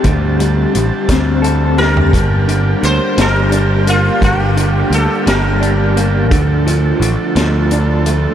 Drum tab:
HH |x-x-x-x-x---|x-x-x-x-x-x-|x-x-x-x-x-x-|x-x-x-x-x-x-|
SD |------o---o-|------o-----|------o-----|------o-----|
FT |-----------o|------------|------------|------------|
BD |o-----o-----|o-----------|o-----------|o-----------|